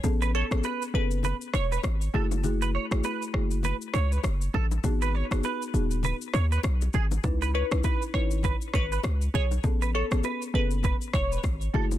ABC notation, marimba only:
X:1
M:4/4
L:1/16
Q:"Swing 16ths" 1/4=100
K:Alyd
V:1 name="Marimba"
[B,CGA]3 [B,CGA] z2 [B,CGA]2 z6 [A,EFG]2 | [A,EFG]3 [A,EFG] z2 [A,EFG]2 z8 | [B,DFG]3 [B,DFG] z2 [B,DFG]2 z8 | [CDEB]3 [CDEB] z2 [CDEB]2 z8 |
[B,CGA]3 [B,CGA] z2 [B,CGA]2 z6 [A,EFG]2 |]